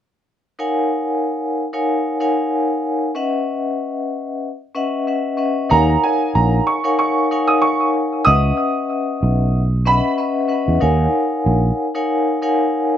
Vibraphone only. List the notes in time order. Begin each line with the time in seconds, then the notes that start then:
0.59 D#4 A#4 C#5 F5 F#5 G#5
1.73 D#4 A#4 C#5 F5 F#5 G#5
2.20 D#4 A#4 C#5 F5 F#5 G#5
3.15 C#4 B4 D#5 E5 F#5
4.75 C#4 B4 D#5 E5 F#5
5.07 C#4 B4 D#5 E5 F#5
5.37 C#4 B4 D#5 E5 F#5
5.70 D#4 A#4 C#5 F5 F#5 G#5
6.84 D#4 A#4 C#5 F5 F#5 G#5
7.31 D#4 A#4 C#5 F5 F#5 G#5
8.25 C#4 B4 D#5 E5 F#5
9.85 C#4 B4 D#5 E5 F#5
10.17 C#4 B4 D#5 E5 F#5
10.48 C#4 B4 D#5 E5 F#5
10.80 D#4 A#4 C#5 F5 F#5 G#5
11.95 D#4 A#4 C#5 F5 F#5 G#5
12.42 D#4 A#4 C#5 F5 F#5 G#5